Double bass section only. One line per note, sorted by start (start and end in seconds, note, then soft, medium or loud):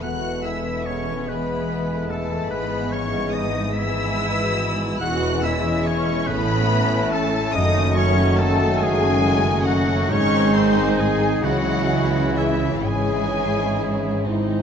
0.02 2.46 E1 medium
2.50 4.98 G#1 medium
5.02 6.13 E1 medium
6.27 7.40 A1 medium
7.55 8.66 F#1 loud
8.80 9.94 F#1 medium
10.10 11.40 G#1 medium
11.43 12.82 C#2 medium
12.85 14.62 G#1 medium